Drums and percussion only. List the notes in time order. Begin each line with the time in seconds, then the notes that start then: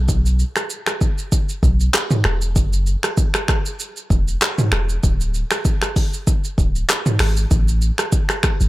0.09 kick, shaker
0.26 shaker
0.39 shaker
0.56 finger snap, cross-stick, shaker
0.70 shaker
0.86 finger snap, cross-stick, shaker
1.01 kick, shaker
1.18 shaker
1.32 kick, shaker
1.49 shaker
1.63 kick, shaker
1.80 shaker
1.93 finger snap, cross-stick, clap, shaker
2.11 mid tom, shaker
2.24 finger snap, cross-stick
2.42 shaker
2.56 kick, shaker
2.73 shaker
2.87 shaker
3.03 finger snap, cross-stick, shaker
3.17 kick, shaker
3.34 finger snap, cross-stick, shaker
3.48 finger snap, kick, cross-stick, shaker
3.66 shaker
3.80 shaker
3.97 shaker
4.10 kick, shaker
4.28 shaker
4.41 finger snap, cross-stick, clap, shaker
4.58 mid tom, shaker
4.72 finger snap, cross-stick
4.89 shaker
5.03 kick, shaker
5.21 shaker
5.34 shaker
5.51 finger snap, cross-stick, shaker
5.65 kick, shaker
5.82 finger snap, cross-stick, shaker
5.96 kick, open hi-hat, shaker
6.13 shaker
6.27 kick, shaker
6.44 shaker
6.58 kick, shaker
6.76 shaker
6.89 finger snap, cross-stick, clap, shaker
7.06 mid tom, shaker
7.19 finger snap, cross-stick, open hi-hat, shaker
7.37 shaker
7.51 kick, shaker
7.68 shaker
7.82 shaker
7.98 finger snap, cross-stick, shaker
8.12 kick, shaker
8.29 finger snap, cross-stick, shaker
8.43 finger snap, kick, cross-stick, shaker
8.61 shaker